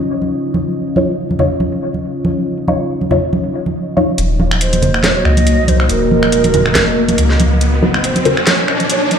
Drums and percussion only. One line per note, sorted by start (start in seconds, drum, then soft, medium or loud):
0.22 high conga medium
0.54 high conga medium
0.96 high conga medium
1.31 high conga medium
1.39 low conga medium
1.60 high conga medium
1.94 high conga medium
2.25 high conga medium
2.68 high conga medium
3.01 high conga medium
3.11 low conga medium
3.33 high conga medium
3.66 high conga medium
3.97 high conga medium
4.18 closed hi-hat medium
4.40 high conga medium
4.51 finger snap medium
4.61 closed hi-hat medium
4.73 closed hi-hat medium
4.73 high conga medium
4.82 closed hi-hat medium
4.82 low conga medium
4.94 finger snap medium
5.03 snare loud
5.03 closed hi-hat medium
5.03 high conga medium
5.25 finger snap medium
5.37 closed hi-hat medium
5.37 high conga medium
5.47 closed hi-hat medium
5.68 closed hi-hat medium
5.68 high conga medium
5.80 finger snap medium
5.89 closed hi-hat medium
6.11 high conga medium
6.23 finger snap medium
6.32 closed hi-hat medium
6.44 closed hi-hat medium
6.44 high conga medium
6.54 closed hi-hat medium
6.54 low conga medium
6.66 finger snap medium
6.75 snare loud
6.75 closed hi-hat medium
6.75 high conga loud
7.08 closed hi-hat medium
7.08 high conga medium
7.18 closed hi-hat medium
7.30 snare soft
7.40 closed hi-hat medium
7.40 high conga medium
7.61 closed hi-hat medium
7.83 high conga loud
7.94 finger snap medium
8.04 closed hi-hat medium
8.15 closed hi-hat medium
8.15 high conga medium
8.25 closed hi-hat medium
8.25 low conga medium
8.37 finger snap medium
8.47 snare loud
8.47 closed hi-hat medium
8.47 high conga loud
8.68 finger snap medium
8.80 closed hi-hat medium
8.80 high conga medium
8.90 closed hi-hat medium
9.11 closed hi-hat medium
9.11 high conga medium